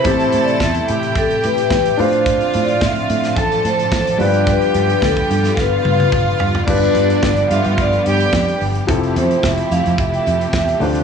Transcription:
Already playing: C3 E3 G3 A3 E4 C5
0.04 A1 A3 C4 E4 G4 A4 A5, kick, closed hi-hat
0.20 closed hi-hat
0.32 A2, closed hi-hat
0.44 D5, closed hi-hat
0.60 E2 E5, kick, snare
0.74 closed hi-hat
0.88 A2 G4 G5, closed hi-hat
1.03 closed hi-hat
1.15 A1 A4, kick, closed hi-hat
1.31 closed hi-hat
1.44 A2 B4, closed hi-hat
1.58 closed hi-hat
1.70 A1, kick, snare
1.86 closed hi-hat
1.97 A2 D3 F3 A3 C4 D4 F4 C5 F5, open hi-hat
2.13 closed hi-hat
2.26 kick, closed hi-hat
2.41 closed hi-hat
2.54 A2, closed hi-hat
2.65 D5, closed hi-hat
2.81 A2 E5, kick, snare
2.95 closed hi-hat
3.10 A2, closed hi-hat
3.23 snare, closed hi-hat
3.36 A1 A4 A5, kick, closed hi-hat
3.52 closed hi-hat
3.65 A2 C5, closed hi-hat
3.79 closed hi-hat
3.92 A1, kick, snare
4.07 closed hi-hat
4.18 G2 G3 B3 D4 F4 G4 B4 D5 G5, open hi-hat
4.34 closed hi-hat
4.47 B4, kick, closed hi-hat
4.62 closed hi-hat
4.74 G2, closed hi-hat
4.90 closed hi-hat
5.02 D2 A4, kick, snare
5.16 kick, closed hi-hat
5.31 G2, closed hi-hat
5.44 snare, closed hi-hat
5.57 G1 F4 B4 F5, kick, snare
5.85 G2, high tom
6.00 high tom
6.12 G1, kick, mid tom
6.40 G2, floor tom
6.55 floor tom
6.67 G1 D3 F3 G3 B3 D4 F4 G4 B4 D5, kick, crash
6.82 closed hi-hat
6.95 G2, closed hi-hat
7.10 closed hi-hat
7.23 G1 D5, kick, snare
7.36 closed hi-hat
7.50 G2 F4 E5 F5, closed hi-hat
7.64 G2, closed hi-hat
7.78 G1 D5, kick, closed hi-hat
7.93 closed hi-hat
8.06 G2 G4 G5, closed hi-hat
8.20 closed hi-hat
8.33 F2, kick, snare
8.48 closed hi-hat
8.61 G1, open hi-hat
8.75 closed hi-hat
8.87 F1 C3 F3 A3 C4 E4 A4, kick, closed hi-hat
9.03 closed hi-hat
9.16 F2 C5, closed hi-hat
9.31 closed hi-hat
9.43 F1 E5, kick, snare
9.58 closed hi-hat
9.71 F2 F5, closed hi-hat
9.86 F2, closed hi-hat
9.98 F1 E5, kick, closed hi-hat
10.14 closed hi-hat
10.27 F2 E5, closed hi-hat
10.41 closed hi-hat
10.53 E2, kick, snare
10.68 closed hi-hat
10.80 D2 D3 D4 F4 C5, open hi-hat
10.95 closed hi-hat

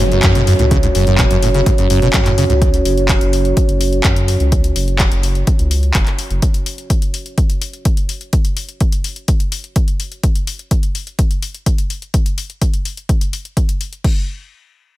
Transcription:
Already playing: F#1 C#4 F#4 C#5, downlifter
0.12 F#2, closed hi-hat
0.23 F#2, kick, clap, closed hi-hat
0.35 B2, closed hi-hat
0.47 F#2, open hi-hat
0.59 C#2 A2, closed hi-hat
0.71 C#3, kick, closed hi-hat
0.83 G#2, closed hi-hat
0.95 F#1 F#2, open hi-hat
1.07 F#2, closed hi-hat
1.18 B2, kick, clap, closed hi-hat
1.31 F#1 F#2, closed hi-hat
1.43 A2, open hi-hat
1.54 C#3, closed hi-hat
1.66 G#2, kick, closed hi-hat
1.78 F#1 F#2, closed hi-hat
1.90 F#2, open hi-hat
2.02 B2, closed hi-hat
2.13 F#2, kick, clap, closed hi-hat
2.25 A2, clap, closed hi-hat
2.38 C#3, open hi-hat
2.50 C#2 G#2, closed hi-hat
2.62 kick, closed hi-hat
2.74 closed hi-hat
2.85 F#1, open hi-hat
2.98 closed hi-hat
3.09 kick, clap, closed hi-hat
3.21 F#1, closed hi-hat
3.33 open hi-hat
3.45 closed hi-hat
3.57 kick, closed hi-hat
3.69 F#1, closed hi-hat
3.81 open hi-hat
3.93 closed hi-hat
4.04 F#2, kick, clap, closed hi-hat
4.16 closed hi-hat
4.28 open hi-hat
4.40 C#2, closed hi-hat
4.52 kick, closed hi-hat
4.64 closed hi-hat
4.76 F#1, open hi-hat
4.88 closed hi-hat
4.99 kick, clap, closed hi-hat
5.12 F#1, closed hi-hat
5.23 open hi-hat
5.35 closed hi-hat
5.47 kick, closed hi-hat
5.59 C#2, closed hi-hat
5.71 open hi-hat
5.83 closed hi-hat
5.94 F#1, kick, clap, closed hi-hat
6.06 clap, closed hi-hat
6.19 open hi-hat
6.31 F#1, closed hi-hat
6.42 kick, closed hi-hat
6.54 closed hi-hat
6.66 open hi-hat
6.78 closed hi-hat
6.90 kick, closed hi-hat
7.02 closed hi-hat
7.14 open hi-hat
7.26 closed hi-hat
7.38 kick, closed hi-hat
7.50 closed hi-hat
7.62 open hi-hat
7.73 closed hi-hat
7.85 kick, closed hi-hat
7.97 closed hi-hat
8.09 open hi-hat
8.21 closed hi-hat
8.33 kick, closed hi-hat
8.45 closed hi-hat
8.57 open hi-hat
8.69 closed hi-hat
8.80 kick, closed hi-hat
8.92 closed hi-hat
9.04 open hi-hat
9.16 closed hi-hat
9.28 kick, closed hi-hat
9.40 closed hi-hat
9.52 open hi-hat
9.64 closed hi-hat
9.76 kick, closed hi-hat
9.88 closed hi-hat
10.00 open hi-hat
10.12 closed hi-hat
10.23 kick, closed hi-hat
10.35 closed hi-hat
10.47 open hi-hat
10.59 closed hi-hat
10.71 kick, closed hi-hat
10.83 closed hi-hat
10.95 open hi-hat
11.07 closed hi-hat
11.19 kick, closed hi-hat
11.31 closed hi-hat
11.42 open hi-hat
11.54 closed hi-hat
11.66 kick, closed hi-hat
11.78 closed hi-hat
11.90 open hi-hat
12.02 closed hi-hat
12.14 kick, closed hi-hat
12.26 closed hi-hat
12.38 open hi-hat
12.50 closed hi-hat
12.62 kick, closed hi-hat
12.74 closed hi-hat
12.85 open hi-hat
12.97 closed hi-hat
13.09 kick, closed hi-hat
13.21 closed hi-hat
13.33 open hi-hat
13.45 closed hi-hat
13.57 kick, closed hi-hat
13.69 closed hi-hat
13.81 open hi-hat
13.93 closed hi-hat
14.04 kick, crash

